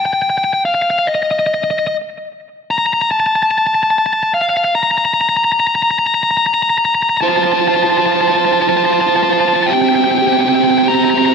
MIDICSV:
0, 0, Header, 1, 3, 480
1, 0, Start_track
1, 0, Tempo, 820793
1, 1339, Time_signature, 6, 3, 24, 8
1, 6635, End_track
2, 0, Start_track
2, 0, Title_t, "Lead electric guitar"
2, 0, Program_c, 0, 29
2, 32, Note_on_c, 0, 79, 61
2, 75, Note_off_c, 0, 79, 0
2, 77, Note_on_c, 0, 79, 68
2, 123, Note_off_c, 0, 79, 0
2, 128, Note_on_c, 0, 79, 60
2, 172, Note_off_c, 0, 79, 0
2, 175, Note_on_c, 0, 79, 72
2, 218, Note_off_c, 0, 79, 0
2, 220, Note_on_c, 0, 79, 59
2, 256, Note_off_c, 0, 79, 0
2, 258, Note_on_c, 0, 79, 65
2, 304, Note_off_c, 0, 79, 0
2, 311, Note_on_c, 0, 79, 58
2, 357, Note_off_c, 0, 79, 0
2, 381, Note_on_c, 0, 77, 69
2, 430, Note_off_c, 0, 77, 0
2, 436, Note_on_c, 0, 77, 51
2, 478, Note_off_c, 0, 77, 0
2, 480, Note_on_c, 0, 77, 64
2, 525, Note_off_c, 0, 77, 0
2, 528, Note_on_c, 0, 77, 57
2, 575, Note_off_c, 0, 77, 0
2, 577, Note_on_c, 0, 77, 56
2, 625, Note_on_c, 0, 75, 62
2, 626, Note_off_c, 0, 77, 0
2, 669, Note_off_c, 0, 75, 0
2, 671, Note_on_c, 0, 75, 43
2, 715, Note_off_c, 0, 75, 0
2, 717, Note_on_c, 0, 75, 49
2, 764, Note_off_c, 0, 75, 0
2, 766, Note_on_c, 0, 75, 46
2, 811, Note_off_c, 0, 75, 0
2, 814, Note_on_c, 0, 75, 56
2, 854, Note_off_c, 0, 75, 0
2, 857, Note_on_c, 0, 75, 44
2, 899, Note_off_c, 0, 75, 0
2, 901, Note_on_c, 0, 75, 50
2, 948, Note_off_c, 0, 75, 0
2, 957, Note_on_c, 0, 75, 44
2, 995, Note_off_c, 0, 75, 0
2, 997, Note_on_c, 0, 75, 51
2, 1043, Note_off_c, 0, 75, 0
2, 1045, Note_on_c, 0, 75, 44
2, 1091, Note_off_c, 0, 75, 0
2, 1093, Note_on_c, 0, 75, 45
2, 1140, Note_off_c, 0, 75, 0
2, 1582, Note_on_c, 0, 82, 103
2, 1623, Note_off_c, 0, 82, 0
2, 1626, Note_on_c, 0, 82, 71
2, 1670, Note_off_c, 0, 82, 0
2, 1673, Note_on_c, 0, 82, 94
2, 1712, Note_off_c, 0, 82, 0
2, 1715, Note_on_c, 0, 82, 71
2, 1759, Note_off_c, 0, 82, 0
2, 1764, Note_on_c, 0, 82, 81
2, 1808, Note_off_c, 0, 82, 0
2, 1820, Note_on_c, 0, 81, 104
2, 1866, Note_off_c, 0, 81, 0
2, 1870, Note_on_c, 0, 81, 76
2, 1906, Note_off_c, 0, 81, 0
2, 1908, Note_on_c, 0, 81, 79
2, 1954, Note_off_c, 0, 81, 0
2, 1962, Note_on_c, 0, 81, 79
2, 2001, Note_off_c, 0, 81, 0
2, 2004, Note_on_c, 0, 81, 94
2, 2049, Note_off_c, 0, 81, 0
2, 2052, Note_on_c, 0, 81, 77
2, 2092, Note_off_c, 0, 81, 0
2, 2094, Note_on_c, 0, 81, 92
2, 2141, Note_off_c, 0, 81, 0
2, 2144, Note_on_c, 0, 81, 82
2, 2188, Note_off_c, 0, 81, 0
2, 2190, Note_on_c, 0, 81, 88
2, 2237, Note_off_c, 0, 81, 0
2, 2240, Note_on_c, 0, 81, 81
2, 2281, Note_off_c, 0, 81, 0
2, 2283, Note_on_c, 0, 81, 88
2, 2327, Note_off_c, 0, 81, 0
2, 2329, Note_on_c, 0, 81, 76
2, 2372, Note_off_c, 0, 81, 0
2, 2375, Note_on_c, 0, 81, 87
2, 2414, Note_off_c, 0, 81, 0
2, 2416, Note_on_c, 0, 81, 71
2, 2463, Note_off_c, 0, 81, 0
2, 2473, Note_on_c, 0, 81, 77
2, 2519, Note_off_c, 0, 81, 0
2, 2537, Note_on_c, 0, 77, 67
2, 2580, Note_off_c, 0, 77, 0
2, 2582, Note_on_c, 0, 77, 50
2, 2627, Note_off_c, 0, 77, 0
2, 2629, Note_on_c, 0, 77, 64
2, 2669, Note_off_c, 0, 77, 0
2, 2671, Note_on_c, 0, 77, 52
2, 2713, Note_off_c, 0, 77, 0
2, 2716, Note_on_c, 0, 77, 53
2, 2760, Note_off_c, 0, 77, 0
2, 2778, Note_on_c, 0, 82, 85
2, 2822, Note_off_c, 0, 82, 0
2, 2824, Note_on_c, 0, 82, 64
2, 2869, Note_off_c, 0, 82, 0
2, 2872, Note_on_c, 0, 82, 73
2, 2908, Note_off_c, 0, 82, 0
2, 2910, Note_on_c, 0, 82, 70
2, 2951, Note_off_c, 0, 82, 0
2, 2953, Note_on_c, 0, 82, 77
2, 2998, Note_off_c, 0, 82, 0
2, 3003, Note_on_c, 0, 82, 72
2, 3044, Note_off_c, 0, 82, 0
2, 3046, Note_on_c, 0, 82, 85
2, 3090, Note_off_c, 0, 82, 0
2, 3093, Note_on_c, 0, 82, 67
2, 3136, Note_off_c, 0, 82, 0
2, 3139, Note_on_c, 0, 82, 87
2, 3181, Note_off_c, 0, 82, 0
2, 3183, Note_on_c, 0, 82, 74
2, 3226, Note_off_c, 0, 82, 0
2, 3228, Note_on_c, 0, 82, 82
2, 3271, Note_off_c, 0, 82, 0
2, 3273, Note_on_c, 0, 82, 64
2, 3313, Note_off_c, 0, 82, 0
2, 3316, Note_on_c, 0, 82, 75
2, 3361, Note_off_c, 0, 82, 0
2, 3363, Note_on_c, 0, 82, 68
2, 3404, Note_off_c, 0, 82, 0
2, 3406, Note_on_c, 0, 82, 77
2, 3451, Note_off_c, 0, 82, 0
2, 3454, Note_on_c, 0, 82, 60
2, 3499, Note_off_c, 0, 82, 0
2, 3501, Note_on_c, 0, 82, 83
2, 3545, Note_off_c, 0, 82, 0
2, 3548, Note_on_c, 0, 82, 56
2, 3590, Note_off_c, 0, 82, 0
2, 3593, Note_on_c, 0, 82, 72
2, 3639, Note_off_c, 0, 82, 0
2, 3644, Note_on_c, 0, 82, 63
2, 3686, Note_off_c, 0, 82, 0
2, 3689, Note_on_c, 0, 82, 74
2, 3723, Note_off_c, 0, 82, 0
2, 3726, Note_on_c, 0, 82, 65
2, 3772, Note_off_c, 0, 82, 0
2, 3780, Note_on_c, 0, 82, 73
2, 3822, Note_off_c, 0, 82, 0
2, 3824, Note_on_c, 0, 82, 60
2, 3871, Note_off_c, 0, 82, 0
2, 3874, Note_on_c, 0, 82, 71
2, 3914, Note_off_c, 0, 82, 0
2, 3916, Note_on_c, 0, 82, 60
2, 3961, Note_off_c, 0, 82, 0
2, 3964, Note_on_c, 0, 82, 75
2, 4004, Note_off_c, 0, 82, 0
2, 4006, Note_on_c, 0, 82, 59
2, 4053, Note_off_c, 0, 82, 0
2, 4063, Note_on_c, 0, 82, 69
2, 4105, Note_off_c, 0, 82, 0
2, 4108, Note_on_c, 0, 82, 57
2, 4147, Note_off_c, 0, 82, 0
2, 4149, Note_on_c, 0, 82, 62
2, 4192, Note_off_c, 0, 82, 0
2, 4194, Note_on_c, 0, 82, 57
2, 4213, Note_off_c, 0, 82, 0
2, 4216, Note_on_c, 0, 81, 78
2, 4258, Note_off_c, 0, 81, 0
2, 4261, Note_on_c, 0, 81, 55
2, 4303, Note_off_c, 0, 81, 0
2, 4306, Note_on_c, 0, 81, 62
2, 4347, Note_off_c, 0, 81, 0
2, 4349, Note_on_c, 0, 81, 58
2, 4394, Note_off_c, 0, 81, 0
2, 4398, Note_on_c, 0, 81, 63
2, 4437, Note_off_c, 0, 81, 0
2, 4440, Note_on_c, 0, 81, 58
2, 4485, Note_off_c, 0, 81, 0
2, 4489, Note_on_c, 0, 81, 70
2, 4525, Note_off_c, 0, 81, 0
2, 4528, Note_on_c, 0, 81, 55
2, 4572, Note_off_c, 0, 81, 0
2, 4577, Note_on_c, 0, 81, 67
2, 4618, Note_off_c, 0, 81, 0
2, 4620, Note_on_c, 0, 81, 58
2, 4660, Note_off_c, 0, 81, 0
2, 4663, Note_on_c, 0, 81, 66
2, 4708, Note_off_c, 0, 81, 0
2, 4712, Note_on_c, 0, 81, 56
2, 4748, Note_off_c, 0, 81, 0
2, 4750, Note_on_c, 0, 81, 64
2, 4795, Note_off_c, 0, 81, 0
2, 4800, Note_on_c, 0, 81, 52
2, 4838, Note_off_c, 0, 81, 0
2, 4841, Note_on_c, 0, 81, 64
2, 4881, Note_off_c, 0, 81, 0
2, 4884, Note_on_c, 0, 81, 50
2, 4929, Note_off_c, 0, 81, 0
2, 4941, Note_on_c, 0, 81, 66
2, 4985, Note_off_c, 0, 81, 0
2, 4988, Note_on_c, 0, 81, 49
2, 5034, Note_off_c, 0, 81, 0
2, 5040, Note_on_c, 0, 81, 59
2, 5080, Note_off_c, 0, 81, 0
2, 5082, Note_on_c, 0, 81, 55
2, 5126, Note_off_c, 0, 81, 0
2, 5128, Note_on_c, 0, 81, 64
2, 5175, Note_off_c, 0, 81, 0
2, 5178, Note_on_c, 0, 81, 58
2, 5221, Note_off_c, 0, 81, 0
2, 5223, Note_on_c, 0, 81, 68
2, 5267, Note_off_c, 0, 81, 0
2, 5269, Note_on_c, 0, 81, 58
2, 5311, Note_off_c, 0, 81, 0
2, 5313, Note_on_c, 0, 81, 65
2, 5354, Note_off_c, 0, 81, 0
2, 5357, Note_on_c, 0, 81, 56
2, 5396, Note_off_c, 0, 81, 0
2, 5399, Note_on_c, 0, 81, 62
2, 5445, Note_off_c, 0, 81, 0
2, 5457, Note_on_c, 0, 81, 55
2, 5496, Note_off_c, 0, 81, 0
2, 5498, Note_on_c, 0, 81, 58
2, 5544, Note_off_c, 0, 81, 0
2, 5546, Note_on_c, 0, 81, 51
2, 5586, Note_off_c, 0, 81, 0
2, 5588, Note_on_c, 0, 81, 55
2, 5631, Note_off_c, 0, 81, 0
2, 5633, Note_on_c, 0, 81, 48
2, 5650, Note_on_c, 0, 79, 82
2, 5680, Note_off_c, 0, 81, 0
2, 5688, Note_off_c, 0, 79, 0
2, 5690, Note_on_c, 0, 79, 58
2, 5734, Note_off_c, 0, 79, 0
2, 5740, Note_on_c, 0, 79, 75
2, 5779, Note_off_c, 0, 79, 0
2, 5781, Note_on_c, 0, 79, 68
2, 5819, Note_off_c, 0, 79, 0
2, 5821, Note_on_c, 0, 79, 80
2, 5865, Note_off_c, 0, 79, 0
2, 5872, Note_on_c, 0, 79, 65
2, 5911, Note_off_c, 0, 79, 0
2, 5914, Note_on_c, 0, 79, 79
2, 5951, Note_off_c, 0, 79, 0
2, 5953, Note_on_c, 0, 79, 70
2, 5997, Note_off_c, 0, 79, 0
2, 6007, Note_on_c, 0, 79, 75
2, 6038, Note_off_c, 0, 79, 0
2, 6040, Note_on_c, 0, 79, 73
2, 6084, Note_off_c, 0, 79, 0
2, 6087, Note_on_c, 0, 79, 82
2, 6129, Note_off_c, 0, 79, 0
2, 6132, Note_on_c, 0, 79, 68
2, 6170, Note_off_c, 0, 79, 0
2, 6172, Note_on_c, 0, 79, 74
2, 6216, Note_off_c, 0, 79, 0
2, 6222, Note_on_c, 0, 79, 66
2, 6258, Note_off_c, 0, 79, 0
2, 6260, Note_on_c, 0, 79, 75
2, 6301, Note_off_c, 0, 79, 0
2, 6304, Note_on_c, 0, 79, 64
2, 6347, Note_off_c, 0, 79, 0
2, 6364, Note_on_c, 0, 82, 79
2, 6399, Note_off_c, 0, 82, 0
2, 6401, Note_on_c, 0, 82, 54
2, 6445, Note_off_c, 0, 82, 0
2, 6457, Note_on_c, 0, 82, 63
2, 6490, Note_off_c, 0, 82, 0
2, 6493, Note_on_c, 0, 82, 54
2, 6536, Note_off_c, 0, 82, 0
2, 6539, Note_on_c, 0, 82, 69
2, 6579, Note_off_c, 0, 82, 0
2, 6582, Note_on_c, 0, 82, 61
2, 6626, Note_off_c, 0, 82, 0
2, 6635, End_track
3, 0, Start_track
3, 0, Title_t, "Overdriven electric guitar"
3, 0, Program_c, 1, 29
3, 4224, Note_on_c, 1, 65, 72
3, 4225, Note_on_c, 1, 72, 71
3, 4260, Note_off_c, 1, 65, 0
3, 4262, Note_off_c, 1, 72, 0
3, 4262, Note_on_c, 1, 65, 51
3, 4265, Note_on_c, 1, 72, 53
3, 4307, Note_off_c, 1, 65, 0
3, 4310, Note_off_c, 1, 72, 0
3, 4312, Note_on_c, 1, 65, 58
3, 4321, Note_on_c, 1, 72, 64
3, 4357, Note_off_c, 1, 65, 0
3, 4357, Note_off_c, 1, 72, 0
3, 4359, Note_on_c, 1, 65, 54
3, 4359, Note_on_c, 1, 72, 52
3, 4404, Note_off_c, 1, 65, 0
3, 4404, Note_off_c, 1, 72, 0
3, 4406, Note_on_c, 1, 65, 64
3, 4409, Note_on_c, 1, 72, 60
3, 4448, Note_off_c, 1, 65, 0
3, 4451, Note_off_c, 1, 72, 0
3, 4451, Note_on_c, 1, 65, 58
3, 4454, Note_on_c, 1, 72, 54
3, 4484, Note_off_c, 1, 65, 0
3, 4486, Note_on_c, 1, 65, 69
3, 4496, Note_off_c, 1, 72, 0
3, 4498, Note_on_c, 1, 72, 66
3, 4531, Note_off_c, 1, 65, 0
3, 4536, Note_off_c, 1, 72, 0
3, 4538, Note_on_c, 1, 72, 60
3, 4540, Note_on_c, 1, 65, 59
3, 4583, Note_off_c, 1, 65, 0
3, 4583, Note_off_c, 1, 72, 0
3, 4585, Note_on_c, 1, 65, 66
3, 4589, Note_on_c, 1, 72, 66
3, 4626, Note_off_c, 1, 65, 0
3, 4629, Note_on_c, 1, 65, 54
3, 4630, Note_off_c, 1, 72, 0
3, 4632, Note_on_c, 1, 72, 59
3, 4668, Note_off_c, 1, 65, 0
3, 4670, Note_on_c, 1, 65, 69
3, 4675, Note_off_c, 1, 72, 0
3, 4677, Note_on_c, 1, 72, 69
3, 4711, Note_off_c, 1, 65, 0
3, 4713, Note_on_c, 1, 65, 55
3, 4721, Note_off_c, 1, 72, 0
3, 4723, Note_on_c, 1, 72, 57
3, 4758, Note_off_c, 1, 65, 0
3, 4761, Note_off_c, 1, 72, 0
3, 4763, Note_on_c, 1, 72, 68
3, 4769, Note_on_c, 1, 65, 69
3, 4805, Note_off_c, 1, 72, 0
3, 4807, Note_on_c, 1, 72, 57
3, 4813, Note_off_c, 1, 65, 0
3, 4816, Note_on_c, 1, 65, 57
3, 4850, Note_off_c, 1, 65, 0
3, 4852, Note_off_c, 1, 72, 0
3, 4852, Note_on_c, 1, 65, 72
3, 4860, Note_on_c, 1, 72, 69
3, 4894, Note_off_c, 1, 65, 0
3, 4897, Note_on_c, 1, 65, 59
3, 4899, Note_off_c, 1, 72, 0
3, 4901, Note_on_c, 1, 72, 56
3, 4942, Note_off_c, 1, 65, 0
3, 4946, Note_off_c, 1, 72, 0
3, 4947, Note_on_c, 1, 65, 71
3, 4949, Note_on_c, 1, 72, 71
3, 4981, Note_off_c, 1, 65, 0
3, 4983, Note_on_c, 1, 65, 56
3, 4984, Note_off_c, 1, 72, 0
3, 4986, Note_on_c, 1, 72, 58
3, 5028, Note_off_c, 1, 65, 0
3, 5031, Note_off_c, 1, 72, 0
3, 5032, Note_on_c, 1, 65, 70
3, 5036, Note_on_c, 1, 72, 64
3, 5074, Note_off_c, 1, 72, 0
3, 5076, Note_off_c, 1, 65, 0
3, 5076, Note_on_c, 1, 72, 56
3, 5078, Note_on_c, 1, 65, 61
3, 5121, Note_off_c, 1, 65, 0
3, 5121, Note_off_c, 1, 72, 0
3, 5123, Note_on_c, 1, 65, 70
3, 5127, Note_on_c, 1, 72, 71
3, 5166, Note_off_c, 1, 65, 0
3, 5166, Note_off_c, 1, 72, 0
3, 5168, Note_on_c, 1, 72, 62
3, 5169, Note_on_c, 1, 65, 60
3, 5204, Note_off_c, 1, 65, 0
3, 5207, Note_on_c, 1, 65, 62
3, 5213, Note_off_c, 1, 72, 0
3, 5216, Note_on_c, 1, 72, 68
3, 5252, Note_off_c, 1, 65, 0
3, 5255, Note_on_c, 1, 65, 55
3, 5257, Note_off_c, 1, 72, 0
3, 5260, Note_on_c, 1, 72, 57
3, 5299, Note_off_c, 1, 65, 0
3, 5299, Note_off_c, 1, 72, 0
3, 5301, Note_on_c, 1, 72, 62
3, 5302, Note_on_c, 1, 65, 64
3, 5343, Note_off_c, 1, 65, 0
3, 5345, Note_on_c, 1, 65, 57
3, 5346, Note_off_c, 1, 72, 0
3, 5352, Note_on_c, 1, 72, 57
3, 5390, Note_off_c, 1, 65, 0
3, 5391, Note_off_c, 1, 72, 0
3, 5393, Note_on_c, 1, 72, 66
3, 5396, Note_on_c, 1, 65, 66
3, 5431, Note_off_c, 1, 72, 0
3, 5433, Note_on_c, 1, 72, 56
3, 5437, Note_off_c, 1, 65, 0
3, 5439, Note_on_c, 1, 65, 55
3, 5476, Note_off_c, 1, 65, 0
3, 5478, Note_off_c, 1, 72, 0
3, 5478, Note_on_c, 1, 65, 58
3, 5483, Note_on_c, 1, 72, 64
3, 5523, Note_off_c, 1, 65, 0
3, 5527, Note_on_c, 1, 65, 50
3, 5528, Note_off_c, 1, 72, 0
3, 5531, Note_on_c, 1, 72, 51
3, 5572, Note_off_c, 1, 65, 0
3, 5574, Note_off_c, 1, 72, 0
3, 5574, Note_on_c, 1, 65, 57
3, 5577, Note_on_c, 1, 72, 58
3, 5615, Note_off_c, 1, 72, 0
3, 5616, Note_off_c, 1, 65, 0
3, 5617, Note_on_c, 1, 72, 49
3, 5618, Note_on_c, 1, 65, 53
3, 5661, Note_off_c, 1, 65, 0
3, 5661, Note_on_c, 1, 60, 62
3, 5662, Note_off_c, 1, 72, 0
3, 5664, Note_on_c, 1, 67, 90
3, 5705, Note_off_c, 1, 60, 0
3, 5705, Note_off_c, 1, 67, 0
3, 5707, Note_on_c, 1, 67, 58
3, 5713, Note_on_c, 1, 60, 48
3, 5750, Note_off_c, 1, 60, 0
3, 5752, Note_off_c, 1, 67, 0
3, 5753, Note_on_c, 1, 60, 56
3, 5754, Note_on_c, 1, 67, 69
3, 5791, Note_off_c, 1, 60, 0
3, 5793, Note_on_c, 1, 60, 50
3, 5797, Note_off_c, 1, 67, 0
3, 5800, Note_on_c, 1, 67, 66
3, 5834, Note_off_c, 1, 60, 0
3, 5836, Note_on_c, 1, 60, 57
3, 5845, Note_off_c, 1, 67, 0
3, 5850, Note_on_c, 1, 67, 68
3, 5880, Note_off_c, 1, 60, 0
3, 5882, Note_on_c, 1, 60, 50
3, 5886, Note_off_c, 1, 67, 0
3, 5888, Note_on_c, 1, 67, 67
3, 5927, Note_off_c, 1, 60, 0
3, 5932, Note_off_c, 1, 67, 0
3, 5934, Note_on_c, 1, 60, 56
3, 5934, Note_on_c, 1, 67, 73
3, 5972, Note_off_c, 1, 60, 0
3, 5974, Note_off_c, 1, 67, 0
3, 5974, Note_on_c, 1, 60, 48
3, 5977, Note_on_c, 1, 67, 65
3, 6009, Note_off_c, 1, 60, 0
3, 6011, Note_on_c, 1, 60, 59
3, 6018, Note_off_c, 1, 67, 0
3, 6020, Note_on_c, 1, 67, 76
3, 6056, Note_off_c, 1, 60, 0
3, 6064, Note_on_c, 1, 60, 50
3, 6065, Note_off_c, 1, 67, 0
3, 6072, Note_on_c, 1, 67, 64
3, 6106, Note_off_c, 1, 60, 0
3, 6108, Note_on_c, 1, 60, 60
3, 6114, Note_off_c, 1, 67, 0
3, 6117, Note_on_c, 1, 67, 80
3, 6151, Note_off_c, 1, 60, 0
3, 6153, Note_off_c, 1, 67, 0
3, 6153, Note_on_c, 1, 60, 49
3, 6155, Note_on_c, 1, 67, 64
3, 6194, Note_off_c, 1, 60, 0
3, 6196, Note_on_c, 1, 60, 64
3, 6200, Note_off_c, 1, 67, 0
3, 6203, Note_on_c, 1, 67, 81
3, 6237, Note_off_c, 1, 60, 0
3, 6239, Note_on_c, 1, 60, 54
3, 6243, Note_off_c, 1, 67, 0
3, 6245, Note_on_c, 1, 67, 66
3, 6282, Note_off_c, 1, 60, 0
3, 6284, Note_on_c, 1, 60, 61
3, 6290, Note_off_c, 1, 67, 0
3, 6298, Note_on_c, 1, 67, 77
3, 6329, Note_off_c, 1, 60, 0
3, 6333, Note_off_c, 1, 67, 0
3, 6333, Note_on_c, 1, 60, 53
3, 6335, Note_on_c, 1, 67, 73
3, 6369, Note_off_c, 1, 60, 0
3, 6371, Note_on_c, 1, 60, 64
3, 6376, Note_off_c, 1, 67, 0
3, 6378, Note_on_c, 1, 67, 80
3, 6414, Note_off_c, 1, 60, 0
3, 6416, Note_on_c, 1, 60, 57
3, 6423, Note_off_c, 1, 67, 0
3, 6426, Note_on_c, 1, 67, 69
3, 6461, Note_off_c, 1, 60, 0
3, 6465, Note_on_c, 1, 60, 57
3, 6467, Note_off_c, 1, 67, 0
3, 6469, Note_on_c, 1, 67, 81
3, 6510, Note_off_c, 1, 60, 0
3, 6513, Note_on_c, 1, 60, 54
3, 6514, Note_off_c, 1, 67, 0
3, 6517, Note_on_c, 1, 67, 68
3, 6550, Note_off_c, 1, 60, 0
3, 6553, Note_on_c, 1, 60, 61
3, 6560, Note_off_c, 1, 67, 0
3, 6562, Note_on_c, 1, 67, 80
3, 6593, Note_off_c, 1, 60, 0
3, 6595, Note_on_c, 1, 60, 50
3, 6602, Note_off_c, 1, 67, 0
3, 6604, Note_on_c, 1, 67, 67
3, 6635, Note_off_c, 1, 60, 0
3, 6635, Note_off_c, 1, 67, 0
3, 6635, End_track
0, 0, End_of_file